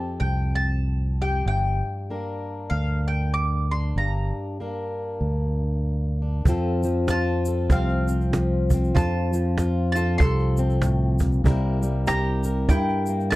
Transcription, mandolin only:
Already playing: A5
0.20 G5
0.55 A5
1.22 G5
1.48 G5
2.70 F5
3.08 G5
3.34 D6
3.71 C6
3.98 A#5
7.10 A5
7.72 F5
8.96 A5
9.92 A5
10.18 C6
12.07 A#5
12.69 G5
13.30 A5

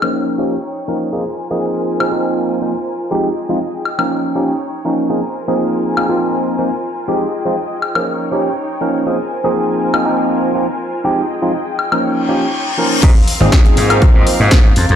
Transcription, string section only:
Already playing: F4 G#4 D#5 G5
0.14 D#4 C#5
1.13 F4 A#4 C5 G#5
3.12 G#4 D#5 G5
4.11 D#4 C#5
5.10 F4 A#4 C5 G#5
7.08 G#4 D#5 G5
8.07 D#4 C#5 G5
9.06 F4 A#4 C5 G#5
11.05 G#4 D#5 G5
12.04 D#4 C#5
13.03 C4 A#4 F5

